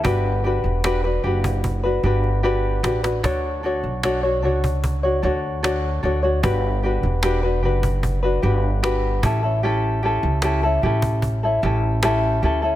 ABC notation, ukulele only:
X:1
M:4/4
L:1/16
Q:1/4=75
K:Glyd
V:1 name="Ukulele"
[DFGB]2 [DFGB]2 [DFGB] [DFB] [DFGB]3 [DFB] [DFGB]2 [DFGB]2 [DFGB] [DFB] | [DFAc]2 [DFAc]2 [DFAc] [DFc] [DFAc]3 [DFc] [DFAc]2 [DFAc]2 [DFAc] [DFc] | [DFGB]2 [DFGB]2 [DFGB] [DFB] [DFGB]3 [DFB] [DFGB]2 [DFGB]2 [CEGA] [CEA] | [CEGA]2 [CEGA]2 [CEGA] [CEA] [CEGA]3 [CEA] [CEGA]2 [CEGA]2 [CEGA] [CEA] |]